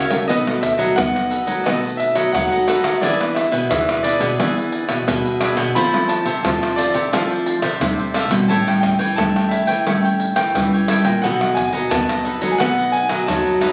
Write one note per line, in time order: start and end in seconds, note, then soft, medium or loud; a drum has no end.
0.00 0.10 A#3 medium
0.00 0.10 F#4 medium
0.00 0.11 A#4 medium
0.10 0.26 C#3 medium
0.10 0.40 A3 medium
0.10 0.40 D#4 medium
0.10 0.40 F#4 medium
0.10 0.28 A#4 soft
0.10 0.27 C#5 soft
0.10 0.27 E5 soft
0.10 pandeiro medium
0.10 tamborim medium
0.10 shaker medium
0.28 0.94 B2 medium
0.28 0.73 B3 loud
0.28 0.45 D#4 medium
0.28 0.45 A4 medium
0.28 0.46 B4 medium
0.28 0.36 D#5 loud
0.28 0.46 D#5 medium
0.28 pandeiro medium
0.28 shaker medium
0.28 surdo medium
0.47 0.92 A3 medium
0.47 0.93 D#4 medium
0.47 0.93 F#4 medium
0.47 0.62 A4 soft
0.47 0.62 B4 soft
0.47 0.62 D#5 soft
0.47 pandeiro soft
0.47 tamborim medium
0.47 shaker soft
0.61 0.94 E5 medium
0.61 muted cavaquinho stroke soft
0.61 pandeiro medium
0.61 tamborim medium
0.61 shaker medium
0.61 surdo medium
0.78 0.94 F#3 loud
0.78 1.13 A4 medium
0.78 1.13 B4 medium
0.78 1.12 D#5 medium
0.78 pandeiro medium
0.78 shaker medium
0.96 1.63 F#3 medium
0.96 1.30 A3 medium
0.96 1.41 B3 medium
0.96 1.30 D#4 medium
0.96 1.30 F#4 medium
0.96 1.61 F#5 loud
0.96 pandeiro medium
0.96 tamborim medium
0.96 shaker medium
0.96 surdo loud
1.15 1.29 A4 soft
1.15 1.30 B4 soft
1.15 1.30 D#5 soft
1.15 pandeiro soft
1.15 tamborim medium
1.15 shaker soft
1.30 1.47 D#4 soft
1.30 1.47 A4 medium
1.30 1.46 B4 medium
1.30 1.45 D#5 medium
1.30 pandeiro medium
1.30 shaker medium
1.46 1.62 F#3 medium
1.46 1.60 A3 medium
1.46 1.60 D#4 medium
1.46 1.60 F#4 medium
1.46 1.64 A4 medium
1.46 1.64 B4 medium
1.46 1.63 D#5 medium
1.46 pandeiro medium
1.46 shaker medium
1.64 2.31 B2 medium
1.64 2.29 A3 medium
1.64 2.10 B3 medium
1.64 1.82 D#4 medium
1.64 2.29 D#4 medium
1.64 2.29 F#4 medium
1.64 1.82 A4 medium
1.64 1.82 B4 medium
1.64 1.72 D#5 medium
1.64 1.82 D#5 medium
1.64 pandeiro medium
1.64 tamborim medium
1.64 shaker medium
1.64 surdo medium
1.83 2.16 A4 soft
1.83 2.15 B4 soft
1.83 2.14 D#5 soft
1.83 pandeiro soft
1.83 shaker soft
1.97 2.30 E5 loud
1.97 pandeiro medium
1.97 shaker medium
2.15 2.31 F#3 medium
2.15 2.50 A4 medium
2.15 2.50 B4 medium
2.15 2.49 D#5 medium
2.15 pandeiro medium
2.15 tamborim medium
2.15 shaker medium
2.33 2.78 F#3 medium
2.33 2.99 F#3 medium
2.33 2.55 A3 medium
2.33 2.55 D#4 medium
2.33 2.55 F#4 medium
2.33 2.91 F#5 medium
2.33 pandeiro medium
2.33 tamborim medium
2.33 shaker medium
2.33 surdo loud
2.52 2.67 A4 soft
2.52 2.68 B4 soft
2.52 2.67 D#5 soft
2.52 pandeiro soft
2.52 shaker soft
2.67 3.00 A3 medium
2.67 2.84 D#4 medium
2.67 3.00 D#4 medium
2.67 3.00 F#4 medium
2.67 2.84 A4 medium
2.67 2.83 B4 medium
2.67 2.82 D#5 medium
2.67 pandeiro medium
2.67 tamborim medium
2.67 shaker medium
2.83 2.99 F#3 medium
2.83 3.01 B4 soft
2.83 3.00 D#5 soft
2.83 pandeiro medium
2.83 tamborim medium
2.83 shaker medium
2.94 3.02 E5 medium
3.01 3.46 E3 loud
3.01 3.68 E3 medium
3.01 3.14 B3 medium
3.01 3.18 D4 medium
3.01 3.15 D4 medium
3.01 3.19 G#4 medium
3.01 3.15 G#4 medium
3.01 3.19 B4 medium
3.01 3.34 D5 medium
3.01 3.19 E5 medium
3.01 pandeiro medium
3.01 shaker medium
3.01 surdo medium
3.20 3.66 B3 medium
3.20 3.66 D4 medium
3.20 3.66 G#4 medium
3.20 3.35 G#4 soft
3.20 3.35 B4 soft
3.20 3.36 E5 soft
3.20 pandeiro soft
3.20 tamborim medium
3.20 shaker soft
3.34 3.67 E5 medium
3.34 muted cavaquinho stroke soft
3.34 pandeiro medium
3.34 tamborim medium
3.52 3.67 B2 medium
3.52 3.87 G#4 medium
3.52 3.86 B4 medium
3.52 3.86 E5 medium
3.52 pandeiro medium
3.52 shaker medium
3.69 4.36 B2 medium
3.69 4.14 E3 medium
3.69 4.03 B3 medium
3.69 4.03 D4 medium
3.69 4.04 G#4 medium
3.69 4.05 E5 medium
3.69 pandeiro medium
3.69 tamborim medium
3.69 shaker medium
3.69 surdo loud
3.89 4.04 G#4 soft
3.89 4.04 B4 soft
3.89 4.04 E5 soft
3.89 pandeiro soft
3.89 tamborim medium
3.89 shaker soft
4.03 4.20 D4 medium
4.03 4.21 G#4 medium
4.03 4.20 B4 medium
4.03 5.03 D5 medium
4.03 4.19 E5 medium
4.03 pandeiro medium
4.20 4.36 B2 medium
4.20 4.33 B3 medium
4.20 4.33 D4 medium
4.20 4.33 G#4 medium
4.20 4.38 G#4 medium
4.20 4.37 B4 medium
4.20 4.37 E5 medium
4.20 pandeiro medium
4.20 shaker medium
4.39 5.04 E3 medium
4.39 4.83 E3 medium
4.39 4.83 B3 medium
4.39 4.55 D4 medium
4.39 4.83 D4 medium
4.39 4.55 G#4 medium
4.39 4.84 G#4 medium
4.39 4.56 B4 medium
4.39 4.56 E5 medium
4.39 pandeiro medium
4.39 tamborim medium
4.39 shaker medium
4.39 surdo medium
4.57 4.89 G#4 soft
4.57 4.89 B4 soft
4.57 4.88 E5 soft
4.57 pandeiro soft
4.57 shaker soft
4.72 pandeiro medium
4.89 5.04 B2 medium
4.89 5.23 G#4 medium
4.89 5.23 B4 medium
4.89 5.23 E5 medium
4.89 pandeiro medium
4.89 tamborim medium
4.89 shaker medium
5.07 5.72 B2 medium
5.07 5.51 B2 loud
5.07 5.28 B3 medium
5.07 5.28 D4 medium
5.07 5.28 G#4 medium
5.07 pandeiro medium
5.07 tamborim medium
5.07 shaker medium
5.07 surdo medium
5.25 5.41 G#4 soft
5.25 5.42 B4 soft
5.25 5.41 E5 soft
5.25 pandeiro soft
5.25 shaker soft
5.40 5.73 B3 medium
5.40 5.73 D4 medium
5.40 5.57 D4 medium
5.40 5.73 G#4 medium
5.40 5.58 G#4 medium
5.40 5.57 B4 medium
5.40 5.56 E5 medium
5.40 pandeiro medium
5.40 tamborim medium
5.57 5.73 B2 loud
5.57 5.75 G#4 soft
5.57 5.74 B4 soft
5.57 5.74 E5 soft
5.57 pandeiro medium
5.57 tamborim medium
5.57 shaker medium
5.75 6.20 F3 medium
5.75 6.41 F3 medium
5.75 5.88 A3 medium
5.75 5.88 C4 medium
5.75 5.88 E4 medium
5.75 5.92 F4 medium
5.75 5.92 A4 medium
5.75 5.92 C5 medium
5.75 5.93 E5 medium
5.75 6.07 B5 loud
5.75 pandeiro medium
5.75 shaker medium
5.75 surdo medium
5.94 6.39 A3 medium
5.94 6.40 C4 medium
5.94 6.40 E4 medium
5.94 6.09 A4 soft
5.94 6.09 C5 soft
5.94 6.09 E5 soft
5.94 pandeiro soft
5.94 tamborim medium
5.94 shaker soft
6.08 6.41 A5 medium
6.08 muted cavaquinho stroke soft
6.08 pandeiro medium
6.08 tamborim medium
6.08 shaker medium
6.25 6.41 C3 medium
6.25 6.60 A4 medium
6.25 6.60 C5 medium
6.25 6.59 E5 medium
6.25 pandeiro medium
6.25 shaker medium
6.43 7.09 C3 medium
6.43 6.88 F3 medium
6.43 7.07 A3 medium
6.43 7.08 C4 medium
6.43 7.08 E4 medium
6.43 6.76 A5 medium
6.43 pandeiro medium
6.43 tamborim medium
6.43 shaker medium
6.43 surdo loud
6.62 6.77 A4 soft
6.62 6.77 C5 soft
6.62 6.77 E5 soft
6.62 pandeiro soft
6.62 tamborim medium
6.62 shaker soft
6.76 6.94 F4 medium
6.76 6.94 A4 medium
6.76 6.94 C5 medium
6.76 8.10 D5 loud
6.76 6.93 E5 medium
6.76 pandeiro medium
6.94 7.09 C3 medium
6.94 7.12 A4 medium
6.94 7.11 C5 medium
6.94 7.11 E5 medium
6.94 pandeiro medium
6.94 shaker medium
7.12 7.78 F3 medium
7.12 7.57 F3 medium
7.12 7.57 A3 medium
7.12 7.57 C4 medium
7.12 7.57 E4 medium
7.12 7.29 F4 medium
7.12 7.29 A4 medium
7.12 7.29 C5 medium
7.12 7.30 E5 medium
7.12 pandeiro medium
7.12 tamborim medium
7.12 shaker medium
7.12 surdo medium
7.31 7.63 A4 soft
7.31 7.62 C5 soft
7.31 7.61 E5 soft
7.31 pandeiro soft
7.31 shaker soft
7.46 pandeiro medium
7.46 shaker medium
7.62 7.78 C3 medium
7.62 7.97 A4 medium
7.62 7.97 C5 medium
7.62 7.96 E5 medium
7.62 pandeiro medium
7.62 tamborim medium
7.62 shaker medium
7.81 8.46 C3 medium
7.81 8.25 C3 loud
7.81 8.10 A3 medium
7.81 8.10 C4 medium
7.81 8.11 E4 medium
7.81 pandeiro medium
7.81 tamborim medium
7.81 shaker medium
7.81 surdo loud
7.99 8.14 A4 soft
7.99 8.14 C5 soft
7.99 8.14 E5 soft
7.99 pandeiro soft
7.99 shaker soft
8.14 8.27 A3 medium
8.14 8.27 C4 medium
8.14 8.27 E4 medium
8.14 8.31 F4 medium
8.14 8.31 A4 medium
8.14 8.30 C5 medium
8.14 8.29 E5 medium
8.14 pandeiro medium
8.14 tamborim medium
8.30 8.46 B2 medium
8.30 8.60 G3 medium
8.30 8.61 C#4 medium
8.30 8.61 E4 medium
8.30 8.48 A4 soft
8.30 8.48 C5 soft
8.30 pandeiro medium
8.30 tamborim medium
8.30 shaker medium
8.48 9.15 A2 medium
8.48 8.94 A2 loud
8.48 8.65 E4 medium
8.48 8.66 A4 medium
8.48 8.66 C#5 medium
8.48 8.66 G5 medium
8.48 8.56 A5 loud
8.48 pandeiro medium
8.48 shaker medium
8.48 surdo medium
8.67 9.13 G3 medium
8.67 9.13 C#4 medium
8.67 9.14 E4 medium
8.67 8.82 A4 soft
8.67 8.82 C#5 soft
8.67 8.82 G5 soft
8.67 pandeiro soft
8.67 tamborim medium
8.67 shaker soft
8.81 9.18 G5 medium
8.81 muted cavaquinho stroke soft
8.81 pandeiro medium
8.81 tamborim medium
8.81 shaker medium
8.81 surdo medium
8.99 9.14 E3 medium
8.99 9.34 A4 medium
8.99 9.33 C#5 medium
8.99 9.33 G5 medium
8.99 pandeiro medium
8.99 shaker medium
9.16 9.83 E3 medium
9.16 9.62 G3 medium
9.16 9.62 A3 medium
9.16 9.63 C#4 medium
9.16 9.63 E4 medium
9.16 9.52 A5 loud
9.16 pandeiro medium
9.16 tamborim medium
9.16 shaker medium
9.16 surdo loud
9.35 9.51 A4 soft
9.35 9.51 C#5 soft
9.35 9.51 G5 soft
9.35 pandeiro soft
9.35 tamborim medium
9.35 shaker soft
9.49 9.68 E4 medium
9.49 9.68 A4 medium
9.49 9.67 C#5 medium
9.49 10.84 E5 medium
9.49 pandeiro medium
9.49 shaker medium
9.53 9.66 G5 medium
9.67 9.83 E3 medium
9.67 9.85 A4 medium
9.67 9.85 C#5 medium
9.67 9.84 G5 medium
9.67 pandeiro medium
9.67 shaker medium
9.87 10.52 A2 medium
9.87 10.31 G3 medium
9.87 10.31 A3 medium
9.87 10.31 C#4 medium
9.87 10.02 E4 medium
9.87 10.31 E4 medium
9.87 10.03 A4 medium
9.87 10.03 C#5 medium
9.87 10.03 G5 medium
9.87 pandeiro medium
9.87 tamborim medium
9.87 shaker medium
9.87 surdo medium
10.04 10.37 A4 soft
10.04 10.36 C#5 soft
10.04 10.35 G5 medium
10.04 pandeiro soft
10.04 shaker soft
10.20 pandeiro medium
10.36 10.52 E3 medium
10.36 10.71 A4 medium
10.36 10.70 C#5 medium
10.36 10.70 G5 medium
10.36 pandeiro medium
10.36 tamborim medium
10.36 shaker medium
10.55 11.20 E3 soft
10.55 10.99 E3 medium
10.55 10.84 G3 medium
10.55 10.84 C#4 medium
10.55 10.84 E4 medium
10.55 pandeiro medium
10.55 tamborim medium
10.55 shaker medium
10.55 surdo loud
10.73 10.88 A4 soft
10.73 10.89 C#5 soft
10.73 10.88 G5 soft
10.73 pandeiro soft
10.73 shaker soft
10.88 11.11 G3 medium
10.88 11.11 C#4 medium
10.88 11.05 E4 medium
10.88 11.11 E4 medium
10.88 11.05 A4 medium
10.88 11.04 C#5 medium
10.88 11.03 G5 medium
10.88 pandeiro medium
10.88 tamborim medium
11.04 11.20 A#2 medium
11.04 11.22 A4 soft
11.04 11.22 C#5 soft
11.04 11.21 G5 medium
11.04 pandeiro medium
11.04 tamborim medium
11.04 shaker medium
11.22 11.89 B2 medium
11.22 11.67 B2 loud
11.22 11.35 F#3 medium
11.22 11.35 A3 medium
11.22 11.39 D#4 medium
11.22 11.36 D#4 medium
11.22 11.40 A4 medium
11.22 11.40 B4 medium
11.22 11.40 D#5 medium
11.22 11.55 F#5 loud
11.22 pandeiro medium
11.22 shaker medium
11.22 surdo medium
11.41 11.87 F#3 medium
11.41 11.87 A3 medium
11.41 11.87 D#4 medium
11.41 11.56 A4 soft
11.41 11.56 B4 soft
11.41 11.57 D#5 medium
11.41 pandeiro soft
11.41 tamborim medium
11.41 shaker soft
11.54 11.88 G#5 medium
11.54 muted cavaquinho stroke soft
11.54 pandeiro medium
11.54 tamborim medium
11.54 surdo medium
11.73 11.88 F#3 medium
11.73 12.08 A4 medium
11.73 12.07 B4 medium
11.73 12.07 D#5 medium
11.73 pandeiro medium
11.73 shaker medium
11.90 12.57 F#2 medium
11.90 12.38 F#3 medium
11.90 12.38 A3 medium
11.90 12.36 B3 medium
11.90 12.38 D#4 medium
11.90 12.48 A5 loud
11.90 pandeiro medium
11.90 tamborim medium
11.90 shaker medium
11.90 surdo loud
12.09 12.25 A4 soft
12.09 12.25 B4 soft
12.09 12.25 D#5 soft
12.09 pandeiro soft
12.09 tamborim medium
12.09 shaker soft
12.25 12.42 D#4 medium
12.25 12.42 A4 medium
12.25 12.41 B4 medium
12.25 12.40 D#5 medium
12.25 pandeiro medium
12.25 shaker medium
12.41 12.54 F#3 medium
12.41 12.57 F#3 medium
12.41 12.54 A3 medium
12.41 12.54 D#4 medium
12.41 12.59 A4 medium
12.41 12.59 B4 medium
12.41 12.58 D#5 medium
12.41 pandeiro medium
12.41 shaker medium
12.52 12.60 G#5 medium
12.58 13.26 B2 medium
12.58 13.24 F#3 medium
12.58 13.24 A3 medium
12.58 13.04 B3 loud
12.58 12.76 D#4 medium
12.58 13.24 D#4 medium
12.58 12.76 A4 medium
12.58 12.77 B4 medium
12.58 12.77 D#5 medium
12.58 12.95 F#5 loud
12.58 pandeiro medium
12.58 tamborim medium
12.58 shaker medium
12.58 surdo medium
12.78 13.10 A4 soft
12.78 13.09 B4 soft
12.78 13.08 D#5 soft
12.78 pandeiro soft
12.78 shaker soft
12.92 13.25 G#5 loud
12.92 pandeiro medium
12.92 shaker medium
13.09 13.26 F#3 medium
13.09 13.44 A4 medium
13.09 13.44 B4 medium
13.09 13.44 D#5 medium
13.09 pandeiro medium
13.09 tamborim medium
13.09 shaker medium
13.26 13.72 F#2 medium
13.26 13.58 F#3 medium
13.26 13.72 F#3 medium
13.26 13.58 A3 soft
13.26 13.58 D#4 medium
13.26 13.72 A5 loud
13.26 pandeiro medium
13.26 tamborim medium
13.26 shaker medium
13.26 surdo medium
13.46 13.61 A4 soft
13.46 13.61 B4 soft
13.46 13.62 D#5 medium
13.46 pandeiro soft
13.46 shaker soft
13.61 13.72 F#3 medium
13.61 13.72 A3 medium
13.61 13.72 D#4 medium
13.61 13.72 A4 medium
13.61 13.72 B4 medium
13.61 13.72 D#5 medium
13.61 pandeiro medium
13.61 tamborim medium
13.61 shaker medium